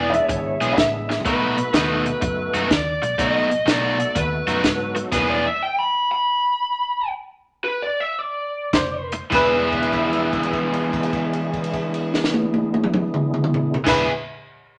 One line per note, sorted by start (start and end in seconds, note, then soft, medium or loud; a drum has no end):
0.00 0.19 E1 medium
0.00 0.12 E3 medium
0.00 0.12 B3 medium
0.00 0.12 D4 medium
0.00 0.12 G#4 medium
0.00 0.26 D5 medium
0.10 0.58 G#3 medium
0.10 0.58 B3 medium
0.10 0.58 D4 medium
0.10 0.14 D#5 medium
0.10 muted overdriven electric guitar stroke soft
0.10 closed hi-hat medium
0.14 0.59 E4 medium
0.14 0.59 G#4 medium
0.14 0.76 E5 medium
0.26 0.55 G#1 medium
0.26 0.75 C#5 medium
0.26 muted overdriven electric guitar stroke soft
0.26 kick loud
0.26 closed hi-hat medium
0.61 0.74 B1 medium
0.61 0.75 E3 medium
0.61 1.22 G#3 medium
0.61 0.75 B3 medium
0.61 1.23 B3 medium
0.61 0.76 D4 medium
0.61 1.23 D4 medium
0.61 1.23 E4 medium
0.61 0.76 G#4 medium
0.61 1.23 G#4 medium
0.61 closed hi-hat medium
0.73 0.77 D#5 medium
0.73 muted overdriven electric guitar stroke soft
0.78 1.26 A1 medium
0.78 1.17 E5 medium
0.78 kick medium
0.78 snare loud
0.78 closed hi-hat medium
1.09 muted overdriven electric guitar stroke soft
1.09 snare medium
1.20 floor tom medium
1.25 1.64 B1 medium
1.25 1.58 B2 medium
1.25 2.61 A3 medium
1.25 1.57 A3 medium
1.25 2.61 B3 medium
1.25 1.57 D#4 medium
1.25 2.61 D#4 medium
1.25 1.56 F#4 medium
1.25 2.61 F#4 medium
1.25 2.62 A4 medium
1.25 1.72 B4 medium
1.25 kick loud
1.25 closed hi-hat medium
1.57 muted overdriven electric guitar stroke soft
1.57 closed hi-hat medium
1.73 2.12 D#2 medium
1.73 2.06 B2 medium
1.73 2.05 A3 medium
1.73 2.05 D#4 medium
1.73 2.05 F#4 medium
1.73 2.74 B4 medium
1.73 snare loud
1.73 closed hi-hat medium
2.06 muted overdriven electric guitar stroke soft
2.06 closed hi-hat medium
2.22 2.48 F#2 medium
2.22 muted overdriven electric guitar stroke soft
2.22 kick loud
2.22 closed hi-hat medium
2.54 2.67 F#2 medium
2.54 2.69 B2 medium
2.54 2.70 A3 medium
2.54 2.70 D#4 medium
2.54 2.70 F#4 medium
2.54 closed hi-hat medium
2.71 2.96 D#2 loud
2.71 3.20 D5 loud
2.71 muted overdriven electric guitar stroke soft
2.71 kick medium
2.71 snare loud
2.71 closed hi-hat medium
3.02 3.15 B1 medium
3.02 muted overdriven electric guitar stroke medium
3.02 closed hi-hat medium
3.18 3.57 B1 medium
3.18 3.51 B2 medium
3.18 3.47 A3 medium
3.18 3.50 A3 medium
3.18 3.48 B3 medium
3.18 3.50 D#4 medium
3.18 3.48 D#4 medium
3.18 3.49 F#4 loud
3.18 3.48 F#4 medium
3.18 3.49 A4 medium
3.18 3.68 D#5 loud
3.18 kick medium
3.18 closed hi-hat medium
3.50 muted overdriven electric guitar stroke medium
3.50 closed hi-hat medium
3.66 4.05 B1 medium
3.66 3.99 B2 medium
3.66 3.98 A3 medium
3.66 3.98 D#4 medium
3.66 3.98 F#4 loud
3.66 4.17 D5 medium
3.66 snare loud
3.66 closed hi-hat medium
3.99 4.60 A3 medium
3.99 4.60 B3 medium
3.99 4.60 D#4 medium
3.99 4.61 F#4 medium
3.99 4.61 A4 medium
3.99 muted overdriven electric guitar stroke medium
3.99 closed hi-hat medium
4.15 4.41 D#2 loud
4.15 4.93 B4 medium
4.15 muted overdriven electric guitar stroke medium
4.15 kick loud
4.15 closed hi-hat medium
4.47 4.60 F#2 medium
4.47 4.62 B2 medium
4.47 4.62 A3 medium
4.47 4.63 D#4 medium
4.47 4.63 F#4 loud
4.47 closed hi-hat medium
4.63 5.02 G#2 medium
4.63 5.12 F#3 medium
4.63 5.12 B3 medium
4.63 5.12 D#4 medium
4.63 5.12 F#4 medium
4.63 5.12 A4 medium
4.63 muted overdriven electric guitar stroke soft
4.63 kick medium
4.63 snare loud
4.63 closed hi-hat medium
4.95 muted overdriven electric guitar stroke soft
4.95 closed hi-hat medium
5.12 5.45 E1 medium
5.12 5.44 E3 loud
5.12 5.41 G3 medium
5.12 5.41 A#3 medium
5.12 5.44 B3 medium
5.12 5.41 C#4 medium
5.12 5.45 D4 medium
5.12 5.41 D#4 medium
5.12 5.41 G4 medium
5.12 5.45 G#4 loud
5.12 5.29 B4 medium
5.12 kick loud
5.12 closed hi-hat medium
5.12 crash medium
5.30 5.46 D5 medium
5.46 5.61 E5 medium
5.63 5.77 G5 medium
5.79 6.09 B5 medium
6.12 7.08 B5 medium
7.64 7.81 B4 medium
7.82 8.00 D5 medium
8.00 8.19 E5 medium
8.19 9.10 D5 medium
8.73 9.20 F1 medium
8.73 9.21 C5 medium
8.73 muted overdriven electric guitar stroke soft
8.73 kick medium
8.73 snare loud
8.73 closed hi-hat medium
9.12 muted overdriven electric guitar stroke soft
9.12 closed hi-hat medium
9.30 13.73 E1 medium
9.30 13.76 E3 medium
9.30 13.76 G#3 medium
9.30 13.77 B3 medium
9.30 13.77 D4 medium
9.30 13.78 D4 loud
9.30 13.77 E4 medium
9.30 13.78 G#4 medium
9.30 13.73 E5 medium
9.30 kick loud
9.30 crash medium
9.35 13.78 G#4 loud
9.35 13.74 B4 loud
9.72 kick medium
9.72 crash soft
9.83 crash soft
9.93 kick medium
9.93 crash soft
10.13 crash soft
10.33 kick medium
10.33 crash soft
10.43 crash soft
10.53 kick medium
10.53 crash soft
10.73 crash soft
10.93 kick medium
10.93 crash soft
11.03 crash medium
11.13 kick medium
11.13 crash medium
11.33 crash medium
11.53 kick medium
11.53 crash soft
11.64 crash medium
11.74 kick medium
11.74 crash medium
11.94 crash medium
12.14 snare medium
12.24 snare medium
12.34 high tom loud
12.54 high tom medium
12.74 high tom medium
12.84 mid tom medium
12.94 mid tom loud
13.14 mid tom medium
13.34 mid tom medium
13.44 mid tom loud
13.54 floor tom loud
13.74 floor tom loud
13.84 14.07 E1 medium
13.84 14.07 E3 medium
13.84 14.07 G#3 medium
13.84 14.08 B3 medium
13.84 14.08 D4 medium
13.84 14.09 D4 medium
13.84 14.08 E4 medium
13.84 14.09 G#4 medium
13.84 14.08 E5 medium
13.84 kick loud
13.84 snare loud
13.84 crash loud
13.88 14.09 G#4 loud
13.88 14.09 B4 medium